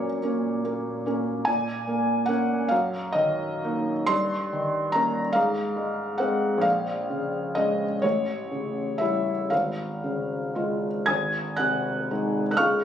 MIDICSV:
0, 0, Header, 1, 2, 480
1, 0, Start_track
1, 0, Tempo, 828729
1, 855, Time_signature, 6, 3, 24, 8
1, 1324, Tempo, 869565
1, 1804, Tempo, 956938
1, 2284, Tempo, 843882
1, 3724, Tempo, 933126
1, 4684, Tempo, 1003344
1, 5164, Tempo, 1041667
1, 6124, Tempo, 981997
1, 6733, End_track
2, 0, Start_track
2, 0, Title_t, "Felt piano"
2, 0, Program_c, 0, 0
2, 0, Control_c, 0, 64, 127
2, 0, Note_on_c, 0, 46, 55
2, 0, Note_on_c, 0, 54, 42
2, 0, Note_on_c, 0, 58, 43
2, 0, Note_on_c, 0, 61, 44
2, 0, Note_on_c, 0, 73, 71
2, 108, Note_off_c, 0, 58, 0
2, 109, Note_off_c, 0, 61, 0
2, 124, Note_off_c, 0, 73, 0
2, 132, Note_on_c, 0, 58, 41
2, 135, Note_on_c, 0, 61, 45
2, 353, Note_off_c, 0, 58, 0
2, 355, Note_off_c, 0, 61, 0
2, 375, Note_on_c, 0, 58, 43
2, 605, Note_off_c, 0, 58, 0
2, 614, Note_on_c, 0, 58, 40
2, 618, Note_on_c, 0, 61, 43
2, 830, Note_off_c, 0, 58, 0
2, 832, Note_off_c, 0, 61, 0
2, 834, Note_off_c, 0, 46, 0
2, 839, Note_on_c, 0, 80, 90
2, 854, Note_on_c, 0, 46, 62
2, 865, Control_c, 0, 64, 0
2, 867, Note_off_c, 0, 54, 0
2, 957, Control_c, 0, 64, 127
2, 1085, Note_on_c, 0, 58, 50
2, 1307, Note_on_c, 0, 78, 87
2, 1313, Note_off_c, 0, 58, 0
2, 1317, Note_off_c, 0, 80, 0
2, 1321, Note_on_c, 0, 58, 46
2, 1324, Note_on_c, 0, 61, 51
2, 1532, Note_off_c, 0, 58, 0
2, 1534, Note_off_c, 0, 61, 0
2, 1535, Note_off_c, 0, 46, 0
2, 1544, Note_on_c, 0, 77, 84
2, 1548, Note_off_c, 0, 78, 0
2, 1559, Note_on_c, 0, 42, 64
2, 1567, Control_c, 0, 64, 0
2, 1671, Control_c, 0, 64, 127
2, 1787, Note_on_c, 0, 75, 86
2, 1799, Note_off_c, 0, 77, 0
2, 1801, Note_on_c, 0, 51, 50
2, 2047, Note_on_c, 0, 58, 44
2, 2051, Note_on_c, 0, 63, 51
2, 2190, Note_off_c, 0, 51, 0
2, 2260, Note_on_c, 0, 84, 102
2, 2264, Note_off_c, 0, 58, 0
2, 2265, Note_off_c, 0, 42, 0
2, 2266, Note_off_c, 0, 63, 0
2, 2270, Note_on_c, 0, 43, 66
2, 2276, Note_off_c, 0, 75, 0
2, 2295, Control_c, 0, 64, 0
2, 2398, Control_c, 0, 64, 127
2, 2521, Note_on_c, 0, 51, 51
2, 2745, Note_on_c, 0, 82, 84
2, 2750, Note_off_c, 0, 84, 0
2, 2756, Note_on_c, 0, 58, 50
2, 2759, Note_on_c, 0, 61, 54
2, 2899, Note_off_c, 0, 51, 0
2, 2967, Note_off_c, 0, 43, 0
2, 2970, Note_off_c, 0, 58, 0
2, 2971, Note_off_c, 0, 61, 0
2, 2974, Note_on_c, 0, 77, 96
2, 2987, Note_off_c, 0, 82, 0
2, 2990, Note_on_c, 0, 44, 65
2, 3005, Control_c, 0, 64, 0
2, 3083, Control_c, 0, 64, 127
2, 3223, Note_on_c, 0, 56, 53
2, 3458, Note_on_c, 0, 78, 79
2, 3461, Note_off_c, 0, 77, 0
2, 3462, Note_off_c, 0, 56, 0
2, 3470, Note_on_c, 0, 60, 52
2, 3471, Note_on_c, 0, 56, 50
2, 3686, Note_on_c, 0, 34, 67
2, 3698, Note_off_c, 0, 44, 0
2, 3700, Note_off_c, 0, 56, 0
2, 3700, Note_off_c, 0, 60, 0
2, 3707, Note_on_c, 0, 77, 96
2, 3716, Note_off_c, 0, 78, 0
2, 3734, Control_c, 0, 64, 0
2, 3828, Control_c, 0, 64, 127
2, 3958, Note_on_c, 0, 49, 49
2, 4188, Note_off_c, 0, 77, 0
2, 4190, Note_on_c, 0, 75, 84
2, 4198, Note_on_c, 0, 56, 48
2, 4198, Note_on_c, 0, 61, 51
2, 4340, Note_off_c, 0, 49, 0
2, 4399, Note_off_c, 0, 34, 0
2, 4417, Note_off_c, 0, 56, 0
2, 4417, Note_off_c, 0, 61, 0
2, 4431, Note_on_c, 0, 73, 79
2, 4434, Note_off_c, 0, 75, 0
2, 4441, Note_on_c, 0, 33, 58
2, 4448, Control_c, 0, 64, 0
2, 4543, Control_c, 0, 64, 127
2, 4686, Note_on_c, 0, 49, 45
2, 4909, Note_on_c, 0, 76, 76
2, 4916, Note_off_c, 0, 73, 0
2, 4922, Note_on_c, 0, 64, 45
2, 4923, Note_on_c, 0, 55, 42
2, 5065, Note_off_c, 0, 49, 0
2, 5146, Note_off_c, 0, 33, 0
2, 5146, Note_off_c, 0, 55, 0
2, 5146, Note_off_c, 0, 64, 0
2, 5158, Note_off_c, 0, 76, 0
2, 5158, Note_on_c, 0, 77, 70
2, 5166, Note_on_c, 0, 32, 54
2, 5173, Control_c, 0, 64, 0
2, 5250, Control_c, 0, 64, 127
2, 5406, Note_on_c, 0, 49, 43
2, 5642, Note_on_c, 0, 56, 39
2, 5645, Note_on_c, 0, 65, 42
2, 5791, Note_off_c, 0, 49, 0
2, 5865, Note_off_c, 0, 56, 0
2, 5867, Note_off_c, 0, 65, 0
2, 5869, Note_off_c, 0, 32, 0
2, 5876, Note_on_c, 0, 92, 72
2, 5880, Note_on_c, 0, 87, 57
2, 5881, Note_on_c, 0, 80, 54
2, 5886, Note_on_c, 0, 32, 49
2, 5895, Control_c, 0, 64, 0
2, 5988, Control_c, 0, 64, 127
2, 6104, Note_off_c, 0, 80, 0
2, 6104, Note_off_c, 0, 87, 0
2, 6109, Note_on_c, 0, 90, 73
2, 6114, Note_on_c, 0, 78, 55
2, 6119, Note_off_c, 0, 92, 0
2, 6122, Note_on_c, 0, 48, 41
2, 6373, Note_on_c, 0, 56, 35
2, 6375, Note_off_c, 0, 77, 0
2, 6375, Note_on_c, 0, 63, 38
2, 6523, Note_off_c, 0, 48, 0
2, 6554, Note_off_c, 0, 78, 0
2, 6564, Note_off_c, 0, 90, 0
2, 6571, Note_on_c, 0, 90, 55
2, 6592, Note_off_c, 0, 56, 0
2, 6593, Note_off_c, 0, 63, 0
2, 6595, Note_off_c, 0, 32, 0
2, 6599, Note_on_c, 0, 89, 85
2, 6601, Note_on_c, 0, 77, 68
2, 6603, Note_on_c, 0, 85, 66
2, 6604, Note_on_c, 0, 49, 44
2, 6606, Note_on_c, 0, 65, 44
2, 6607, Note_on_c, 0, 56, 45
2, 6608, Note_on_c, 0, 37, 51
2, 6610, Note_off_c, 0, 90, 0
2, 6624, Control_c, 0, 64, 0
2, 6701, Control_c, 0, 64, 127
2, 6733, Note_off_c, 0, 37, 0
2, 6733, Note_off_c, 0, 49, 0
2, 6733, Note_off_c, 0, 56, 0
2, 6733, Note_off_c, 0, 65, 0
2, 6733, Note_off_c, 0, 77, 0
2, 6733, Note_off_c, 0, 85, 0
2, 6733, Note_off_c, 0, 89, 0
2, 6733, End_track
0, 0, End_of_file